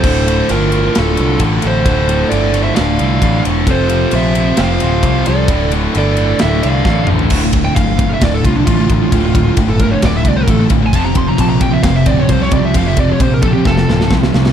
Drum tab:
CC |x---------------|----------------|----------------|----------------|
RD |--x-x-x-x-x-x-x-|x-x-x-x-x-x-x-x-|x-x-x-x-x-x-x-x-|x-x-x-x-x-x-----|
SD |--------o-------|--------o-------|--------o-------|--------o---o---|
T2 |----------------|----------------|----------------|--------------o-|
FT |----------------|----------------|----------------|---------------o|
BD |o-----------o---|o-----------o---|o-----------o---|o-----------o---|

CC |x---------------|----------------|----------------|----------------|
RD |--x-x-x-x-x-x-x-|x-x-x-x-x-x-x-x-|x-x-x-x-x-x-x-x-|x-x-x-x---------|
SD |--------o-------|--------o-------|--------o-------|--------oooooooo|
T2 |----------------|----------------|----------------|----------------|
FT |----------------|----------------|----------------|----------------|
BD |o-o-o-o-o-o-o-o-|o-o-o-o-o-o-o-o-|o-o-o-o-o-o-o-o-|o-o-o-o-o---o---|